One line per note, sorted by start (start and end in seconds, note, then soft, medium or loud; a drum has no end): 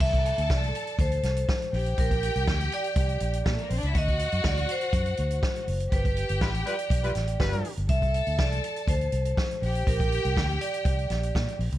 0.00 0.31 C2 loud
0.00 1.46 A4 loud
0.00 0.52 E5 loud
0.00 1.46 A5 loud
0.00 kick loud
0.00 crash loud
0.14 kick medium
0.14 closed hi-hat soft
0.26 closed hi-hat medium
0.38 0.48 D2 medium
0.38 closed hi-hat medium
0.50 0.70 C2 loud
0.50 0.96 D5 medium
0.50 kick loud
0.50 snare loud
0.64 closed hi-hat soft
0.75 closed hi-hat medium
0.87 closed hi-hat medium
0.99 1.19 D2 medium
0.99 2.01 C5 loud
0.99 kick loud
0.99 closed hi-hat medium
1.11 closed hi-hat medium
1.23 1.44 C2 medium
1.23 snare soft
1.23 closed hi-hat medium
1.36 closed hi-hat medium
1.49 kick loud
1.49 snare loud
1.62 closed hi-hat soft
1.73 1.93 A#1 loud
1.73 3.38 G4 loud
1.73 3.38 G5 loud
1.73 open hi-hat medium
1.86 closed hi-hat soft
1.98 2.29 A#1 loud
1.98 2.45 A#4 medium
1.98 kick loud
1.98 closed hi-hat medium
2.11 kick loud
2.11 closed hi-hat medium
2.23 closed hi-hat medium
2.35 2.45 C2 medium
2.35 closed hi-hat soft
2.48 2.68 D2 loud
2.48 kick loud
2.48 snare loud
2.60 closed hi-hat soft
2.72 3.67 D5 loud
2.72 closed hi-hat medium
2.84 closed hi-hat medium
2.96 3.16 C2 medium
2.96 kick loud
2.96 closed hi-hat loud
3.09 closed hi-hat soft
3.20 3.41 A#1 medium
3.20 closed hi-hat medium
3.33 closed hi-hat medium
3.46 3.57 A#2 medium
3.46 3.54 G3 medium
3.46 3.54 G4 medium
3.46 kick loud
3.46 snare loud
3.54 3.62 A3 medium
3.54 3.62 A4 medium
3.58 closed hi-hat soft
3.62 3.71 A#3 medium
3.62 3.71 A#4 medium
3.70 3.81 A#1 loud
3.70 3.79 C4 medium
3.70 3.79 C5 medium
3.70 open hi-hat medium
3.78 3.87 D4 medium
3.78 3.87 D5 loud
3.83 3.93 C#2 loud
3.83 3.95 E4 medium
3.83 3.95 E5 loud
3.83 closed hi-hat soft
3.95 4.26 D2 loud
3.95 5.64 F#4 loud
3.95 4.43 D#5 loud
3.95 5.64 F#5 loud
3.95 kick loud
3.95 closed hi-hat medium
4.08 kick loud
4.08 closed hi-hat soft
4.19 closed hi-hat medium
4.32 4.42 F#2 medium
4.32 closed hi-hat soft
4.44 4.65 D2 loud
4.44 4.71 D5 loud
4.44 kick loud
4.44 snare loud
4.57 closed hi-hat soft
4.69 5.97 C5 loud
4.69 closed hi-hat medium
4.81 closed hi-hat medium
4.93 5.13 F#2 medium
4.93 kick loud
4.93 closed hi-hat loud
5.06 closed hi-hat soft
5.17 5.39 D2 medium
5.17 closed hi-hat medium
5.31 closed hi-hat medium
5.43 kick loud
5.43 snare loud
5.56 closed hi-hat soft
5.68 5.88 F#1 medium
5.68 open hi-hat medium
5.80 closed hi-hat medium
5.91 6.23 G1 loud
5.91 7.61 G4 loud
5.91 6.39 B4 medium
5.91 7.61 G5 loud
5.91 kick loud
5.91 closed hi-hat medium
6.05 kick loud
6.05 closed hi-hat soft
6.17 closed hi-hat medium
6.29 6.39 G1 medium
6.29 closed hi-hat medium
6.41 6.62 A1 loud
6.41 6.50 G3 medium
6.41 6.50 F4 medium
6.41 6.50 B4 loud
6.41 kick loud
6.41 snare loud
6.55 closed hi-hat soft
6.66 6.74 G3 medium
6.66 6.74 F4 medium
6.66 6.74 B4 loud
6.66 7.61 D5 loud
6.66 closed hi-hat medium
6.79 closed hi-hat medium
6.90 7.11 B1 medium
6.90 kick loud
6.90 closed hi-hat loud
7.03 7.11 G3 loud
7.03 7.11 F4 medium
7.03 7.11 B4 loud
7.03 closed hi-hat soft
7.15 7.36 A1 medium
7.15 snare soft
7.15 closed hi-hat medium
7.27 closed hi-hat medium
7.40 7.51 G1 medium
7.40 7.72 G3 loud
7.40 7.72 F4 loud
7.40 7.72 B4 loud
7.40 kick loud
7.40 snare loud
7.52 7.62 G2 medium
7.52 closed hi-hat soft
7.65 open hi-hat medium
7.77 7.87 G1 loud
7.77 closed hi-hat soft
7.89 8.20 C2 loud
7.89 9.35 A4 loud
7.89 8.40 E5 loud
7.89 9.35 A5 loud
7.89 kick loud
7.89 closed hi-hat medium
8.02 kick loud
8.02 closed hi-hat soft
8.14 closed hi-hat medium
8.27 8.37 D2 medium
8.27 closed hi-hat soft
8.39 8.59 C2 loud
8.39 8.90 D5 medium
8.39 kick loud
8.39 snare loud
8.52 closed hi-hat soft
8.64 closed hi-hat medium
8.76 closed hi-hat medium
8.87 9.08 D2 medium
8.87 9.90 C5 loud
8.87 kick loud
8.87 closed hi-hat loud
9.01 closed hi-hat soft
9.12 9.33 C2 medium
9.12 closed hi-hat medium
9.25 closed hi-hat medium
9.37 kick loud
9.37 snare loud
9.51 closed hi-hat soft
9.62 9.82 A#1 loud
9.62 11.56 G4 loud
9.62 11.56 G5 loud
9.62 open hi-hat medium
9.75 closed hi-hat medium
9.87 10.18 A#1 loud
9.87 10.33 A#4 medium
9.87 kick loud
9.87 closed hi-hat medium
10.00 kick loud
10.00 closed hi-hat medium
10.12 closed hi-hat medium
10.25 10.34 C2 medium
10.25 closed hi-hat soft
10.37 10.57 D2 loud
10.37 kick loud
10.37 snare loud
10.50 closed hi-hat soft
10.61 11.56 D5 loud
10.61 closed hi-hat medium
10.74 closed hi-hat medium
10.85 11.05 C2 medium
10.85 kick loud
10.85 closed hi-hat loud
10.99 closed hi-hat soft
11.10 11.30 A#1 medium
11.10 snare soft
11.10 closed hi-hat medium
11.23 closed hi-hat medium
11.35 11.46 A#2 medium
11.35 kick loud
11.35 snare loud
11.48 closed hi-hat soft
11.59 11.70 A#1 loud
11.59 open hi-hat medium
11.72 11.78 C#2 loud
11.72 closed hi-hat medium